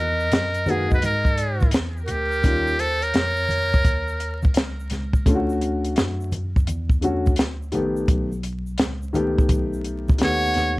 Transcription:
Already playing: tine electric piano E2, flute D#5
0.00 muted trumpet A#4
0.20 shaker
0.32 tine electric piano F#2, snare, closed hi-hat, low conga, shaker
0.54 closed hi-hat, shaker
0.66 grand piano D#3 G#3 A#3 F#4, flute B4, closed hi-hat, high conga, low conga, shaker
0.71 muted trumpet G#4
0.90 flute D#5, kick, shaker
0.94 muted trumpet B4
1.02 tine electric piano G#2, muted trumpet A#4, flute D#5, closed hi-hat, high conga, shaker
1.25 kick, shaker
1.38 closed hi-hat, shaker
1.60 kick, high conga, shaker
1.71 tine electric piano E2, snare, closed hi-hat, shaker
1.97 shaker
2.03 muted trumpet F#4, flute A#4
2.08 tine electric piano D2, muted trumpet G4, flute A#4, closed hi-hat, low conga, shaker
2.32 shaker
2.43 tine electric piano D#2, grand piano D#3 G3 C#4 F4, kick, closed hi-hat, shaker
2.67 shaker
2.79 muted trumpet A4, flute C5, closed hi-hat, shaker
3.01 muted trumpet A#4, flute C#5, closed hi-hat, shaker
3.14 tine electric piano F2, snare, closed hi-hat, low conga, shaker
3.36 shaker
3.49 closed hi-hat, high conga, low conga, shaker
3.74 kick, shaker
3.85 tine electric piano D#2, kick, closed hi-hat, high conga, shaker
4.08 shaker
4.20 closed hi-hat, shaker
4.43 kick, high conga, shaker
4.54 tine electric piano C#2, snare, closed hi-hat, shaker
4.80 shaker
4.90 tine electric piano C#2, snare, closed hi-hat, low conga, shaker
5.13 kick, shaker
5.26 tine electric piano D2, grand piano D3 A3 C#4 F4, kick, closed hi-hat, shaker
5.35 grand piano F#4
5.49 shaker
5.61 closed hi-hat, shaker
5.85 closed hi-hat, shaker
5.96 tine electric piano F#2, snare, closed hi-hat, low conga, shaker
6.20 shaker
6.32 closed hi-hat, high conga, low conga, shaker
6.56 kick, shaker
6.67 tine electric piano E2, closed hi-hat, high conga, shaker
6.90 kick, shaker
7.01 grand piano D3 A3 C#4 F#4, closed hi-hat, shaker
7.26 kick, high conga, shaker
7.36 tine electric piano D2, snare, closed hi-hat, shaker
7.62 shaker
7.72 tine electric piano A#1, grand piano D#3 A3 B3 G4, closed hi-hat, low conga, shaker
7.96 shaker
8.08 tine electric piano B1, kick, closed hi-hat, shaker
8.32 shaker
8.43 closed hi-hat, shaker
8.67 shaker
8.78 tine electric piano C#2, snare, closed hi-hat, low conga, shaker
9.02 shaker
9.13 grand piano D#3 A3 B3 G4, closed hi-hat, high conga, low conga, shaker
9.38 kick, shaker
9.49 tine electric piano B1, kick, closed hi-hat, high conga, shaker
9.73 shaker
9.84 closed hi-hat, shaker
10.08 kick, high conga, shaker
10.18 tine electric piano D#2, grand piano D#3 A3 B3 G4, flute F#5, snare, closed hi-hat, shaker
10.24 muted trumpet C#5
10.45 shaker
10.54 tine electric piano D#2, snare, closed hi-hat, low conga, shaker

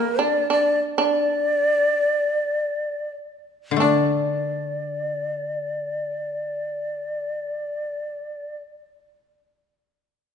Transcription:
Already playing: koto E3, shamisen A#3, shakuhachi A#4
0.19 shamisen D4, shakuhachi D5
0.50 shamisen D4, shakuhachi D5
0.98 shamisen D4, shakuhachi D5
3.71 koto D3
3.77 koto A3, shamisen D4
3.81 koto D4, shakuhachi D5

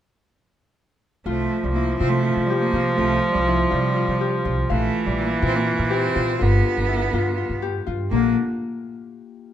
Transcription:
1.26 upright bass C2, viola F3, cello A3, harp F4
1.63 upright bass C2, cello G3
1.72 cello A#3, harp E4
1.98 upright bass C3, cello C4, harp F4
2.10 cello A3
2.25 harp F4
2.37 upright bass C3
2.46 cello G3
2.50 harp G4
2.59 cello A#3
2.73 upright bass C3, harp F4
2.94 upright bass C2, cello A3, harp F4
3.32 upright bass C2, cello G3
3.43 cello F3
3.47 harp E4
3.69 upright bass C3, cello G3, harp F4
3.96 harp F4
4.08 upright bass C3
4.21 harp G4
4.45 upright bass C2, harp F4
4.69 upright bass A#1, viola E3, cello A3, harp F5
5.06 upright bass A#1, cello G3
5.18 cello A#3, harp E4
5.42 upright bass A#2, cello C4, harp F4
5.56 cello A#3
5.66 harp F4
5.79 upright bass A#2
5.90 cello C4, harp G4
6.15 upright bass A#2, harp F4
6.39 upright bass G1, viola D3, cello B3, harp F4
6.77 upright bass G1
6.89 harp E4
7.13 upright bass G2, harp F4
7.37 harp F4
7.49 upright bass G2
7.62 harp G4
7.87 upright bass G2, harp F4
8.11 upright bass A#1, viola D3, cello A#3, harp A#3

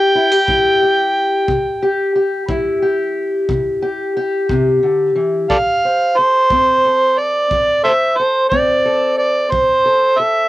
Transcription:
Already playing: steel-string acoustic guitar E4 G4, harmonica G5
0.15 steel-string acoustic guitar E4
0.31 steel-string acoustic guitar G4
0.48 steel-string acoustic guitar G3 E4, kick
0.83 steel-string acoustic guitar G4
1.48 steel-string acoustic guitar C3, kick
1.83 steel-string acoustic guitar G4
2.16 steel-string acoustic guitar G4
2.48 steel-string acoustic guitar G3 E4, kick
2.82 steel-string acoustic guitar G4
3.49 steel-string acoustic guitar C3, kick
3.82 steel-string acoustic guitar G4
4.17 steel-string acoustic guitar G4
4.50 steel-string acoustic guitar C3, kick
4.83 steel-string acoustic guitar D3
5.15 steel-string acoustic guitar E3
5.50 steel-string acoustic guitar F3, harmonica A4 D5 F5, kick
5.85 steel-string acoustic guitar C5
6.17 steel-string acoustic guitar A4, harmonica C5
6.50 steel-string acoustic guitar A3 C4, kick
6.85 steel-string acoustic guitar A4
7.18 harmonica D5
7.51 steel-string acoustic guitar F3, kick
7.84 harmonica A4 C5 E5, steel-string acoustic guitar C5
8.17 steel-string acoustic guitar A4, harmonica C5
8.49 steel-string acoustic guitar A3 C4, harmonica D5, kick
8.85 steel-string acoustic guitar A4
9.18 harmonica D5
9.51 steel-string acoustic guitar F3, harmonica C5, kick
9.85 steel-string acoustic guitar A4
10.19 steel-string acoustic guitar A4, harmonica E5

